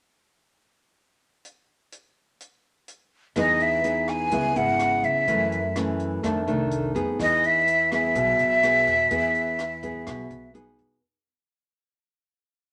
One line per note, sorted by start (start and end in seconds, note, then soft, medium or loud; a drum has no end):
1.45 closed hi-hat soft
1.92 closed hi-hat soft
2.40 closed hi-hat soft
2.88 closed hi-hat soft
3.36 4.28 E2 medium
3.36 4.30 E3 medium
3.36 3.80 B3 medium
3.36 3.81 D#4 medium
3.36 3.81 G#4 medium
3.36 3.64 D#5 medium
3.36 kick soft
3.36 cross-stick medium
3.36 closed hi-hat soft
3.60 4.10 E5 medium
3.60 closed hi-hat soft
3.84 4.30 B3 soft
3.84 4.30 D#4 soft
3.84 4.30 G#4 medium
3.84 closed hi-hat soft
4.08 4.58 G#5 medium
4.08 cross-stick medium
4.08 closed hi-hat soft
4.31 4.54 C#2 medium
4.31 5.25 C#3 soft
4.31 4.52 B3 medium
4.31 4.52 E4 soft
4.31 4.52 G#4 medium
4.31 kick soft
4.31 closed hi-hat soft
4.55 5.00 G#1 medium
4.55 5.24 B3 medium
4.55 5.24 E4 medium
4.55 5.24 G#4 medium
4.55 5.06 F#5 medium
4.55 closed hi-hat soft
4.79 cross-stick soft
4.79 closed hi-hat soft
5.03 5.26 C#2 medium
5.03 5.76 E5 medium
5.03 closed hi-hat soft
5.28 6.19 F#2 medium
5.28 6.21 F#2 medium
5.28 5.59 E3 medium
5.28 5.59 A3 medium
5.28 5.59 C#4 medium
5.28 kick medium
5.28 closed hi-hat soft
5.52 closed hi-hat soft
5.75 6.22 E3 medium
5.75 6.22 A3 soft
5.75 6.22 C#4 medium
5.75 cross-stick medium
5.75 closed hi-hat soft
6.00 closed hi-hat soft
6.23 7.17 F2 soft
6.23 6.46 F2 medium
6.23 6.43 D#3 soft
6.23 6.43 A3 medium
6.23 6.44 D4 medium
6.23 kick soft
6.23 cross-stick soft
6.23 closed hi-hat soft
6.47 6.92 C2 medium
6.47 6.91 D#3 medium
6.47 6.91 A3 medium
6.47 6.92 D4 medium
6.47 closed hi-hat soft
6.71 closed hi-hat soft
6.95 7.17 F2 medium
6.95 7.63 B3 medium
6.95 7.63 D#4 medium
6.95 7.63 G#4 medium
6.95 closed hi-hat soft
7.19 8.11 E2 medium
7.19 8.13 E3 medium
7.19 7.48 D#5 loud
7.19 kick soft
7.19 cross-stick soft
7.19 closed hi-hat soft
7.44 7.92 E5 medium
7.44 closed hi-hat soft
7.67 closed hi-hat soft
7.91 8.59 B3 medium
7.91 8.60 G#4 medium
7.91 10.52 E5 loud
7.91 cross-stick medium
7.91 closed hi-hat soft
8.15 8.37 B1 medium
8.15 9.09 B2 medium
8.15 kick soft
8.15 closed hi-hat soft
8.39 8.84 B1 medium
8.39 closed hi-hat soft
8.63 8.94 B3 medium
8.63 8.94 G#4 medium
8.63 cross-stick medium
8.63 closed hi-hat soft
8.87 9.09 E2 medium
8.87 closed hi-hat soft
9.11 10.03 E2 medium
9.11 10.04 E3 medium
9.11 9.58 B3 medium
9.11 9.59 G#4 medium
9.11 kick medium
9.11 closed hi-hat soft
9.35 closed hi-hat soft
9.59 cross-stick medium
9.59 closed hi-hat soft
9.83 10.51 B3 soft
9.83 10.51 G#4 medium
9.83 kick soft
9.83 closed hi-hat soft
10.06 10.29 B1 medium
10.06 11.00 B2 medium
10.06 kick medium
10.06 cross-stick medium
10.06 closed hi-hat soft
10.30 10.75 B1 medium
10.30 closed hi-hat soft
10.54 10.98 B3 medium
10.54 10.99 D#4 medium
10.54 10.99 G#4 medium
10.54 closed hi-hat soft
10.79 11.01 E2 medium
10.79 closed hi-hat soft